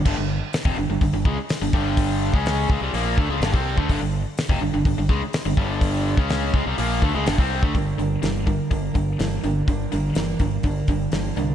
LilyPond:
<<
  \new Staff \with { instrumentName = "Steel-string acoustic guitar" } { \time 4/4 \key g \minor \tempo 4 = 125 r1 | r1 | r1 | r1 |
<g, d g bes d' bes'>8 <g bes d' bes'>8 <g, d g bes d' bes'>8 <g bes d' bes'>8 <g bes d' bes'>8 <g bes d' bes'>8 <g, d g bes d' bes'>8 <g bes d' bes'>8 | <g, d g bes d' bes'>8 <g bes d' bes'>8 <g, d g bes d' bes'>8 <g bes d' bes'>8 <g bes d' bes'>8 <g bes d' bes'>8 <g, d g bes d' bes'>8 <g bes d' bes'>8 | }
  \new Staff \with { instrumentName = "Distorted electric guitar" } { \clef bass \time 4/4 \key g \minor <g, d>16 <g, d>8 r8 <f, c>16 <g, d>16 <g, d>16 <g, d>16 <g, d>16 <cis aes>16 r8 <g, d>16 <g, d g>8~ | <g, d g>8. <cis aes cis'>8. <cis aes>16 <c g>16 <bes, f bes>8 <d a>16 <cis aes>16 <g, d>16 <c g c'>8 <d a>16 | <g, d>16 <g, d>8 r8 <f, c>16 <g, d>16 <g, d>16 <g, d>16 <g, d>16 <cis aes>16 r8 <g, d>16 <g, d g>8~ | <g, d g>8. <cis aes cis'>8. <cis aes>16 <c g>16 <bes, f bes>8 <d a>16 <cis aes>16 <g, d>16 <c g c'>8 <d a>16 |
<g, d>8 <g, d>8 <g, e>8 <g, d>8 <g, d>8 <g, d>8 <g, e>8 <g, d>8 | <g, d>8 <g, d>8 <g, e>8 <g, d>8 <g, d>8 <g, d>8 <g, e>8 <g, d>8 | }
  \new Staff \with { instrumentName = "Overdriven electric guitar" } { \clef bass \time 4/4 \key g \minor <g, d>16 <g, d>8 r8 <f, c>16 <g, d>16 <g, d>16 <g, d>16 <g, d>16 <cis aes>16 r8 <g, d>16 <g, d g>8~ | <g, d g>8. <cis aes cis'>8. <cis aes>16 <c g>16 <bes, f bes>8 <d a>16 <cis aes>16 <g, d>16 <c g c'>8 <d a>16 | <g, d>16 <g, d>8 r8 <f, c>16 <g, d>16 <g, d>16 <g, d>16 <g, d>16 <cis aes>16 r8 <g, d>16 <g, d g>8~ | <g, d g>8. <cis aes cis'>8. <cis aes>16 <c g>16 <bes, f bes>8 <d a>16 <cis aes>16 <g, d>16 <c g c'>8 <d a>16 |
<g, d>8 <g, d>8 <g, e>8 <g, d>8 <g, d>8 <g, d>8 <g, e>8 <g, d>8 | <g, d>8 <g, d>8 <g, e>8 <g, d>8 <g, d>8 <g, d>8 <g, e>8 <g, d>8 | }
  \new Staff \with { instrumentName = "Fingered electric bass" } { \clef bass \time 4/4 \key g \minor g,,16 g,,8 r8 f,,16 g,,16 g,,16 g,,16 g,,16 cis,16 r8 g,,16 g,,8~ | g,,8. cis,8. cis,16 c,16 bes,,8 d,16 cis,16 g,,16 c,8 d,16 | g,,16 g,,8 r8 f,,16 g,,16 g,,16 g,,16 g,,16 cis,16 r8 g,,16 g,,8~ | g,,8. cis,8. cis,16 c,16 bes,,8 d,16 cis,16 g,,16 c,8 d,16 |
g,,8 g,,8 g,,4 g,,8 g,,8 g,,8 g,,8 | g,,8 g,,8 g,,8 g,,8 g,,8 g,,8 g,,8 c,8 | }
  \new DrumStaff \with { instrumentName = "Drums" } \drummode { \time 4/4 <cymc bd>4 <hho sn>16 bd8. <hho bd>8 bd8 <hho sn>8 bd8 | <hho bd>8. bd16 <hho sn>8 bd8 hho8 bd8 <hho sn>16 bd8 bd16 | <hho bd>4 <hho sn>16 bd8. <hho bd>8 bd8 <hho sn>8 bd8 | <hho bd>8. bd16 <hho sn>8 bd8 hho8 bd8 <hho sn>16 bd8 bd16 |
<hho bd>8 hho8 <hho sn>8 <hho bd>8 <hho bd>8 <hho bd>8 <hho sn>8 hho8 | <hho bd>8 hho8 <hho sn>8 <hho bd>8 <hho bd>8 <hho bd>8 <hho sn>8 hho8 | }
>>